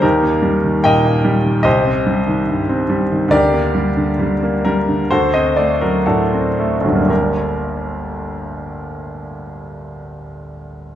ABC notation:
X:1
M:4/4
L:1/16
Q:1/4=65
K:Gm
V:1 name="Grand piano"
[EGB]4 [Beg]4 [Gce]8 | [GBd]6 B2 [^FAc] e d B [DFA]4 | [G,,,D,,G,B,DGB]16 |]
V:2 name="Grand piano" clef=bass
E,, B, G, E, B,, B, G, E, C,, C G, E, G,, C G, E, | D,, B, G, D, G, B, G, D, D,, C A, ^F, A,, C A, F, | z16 |]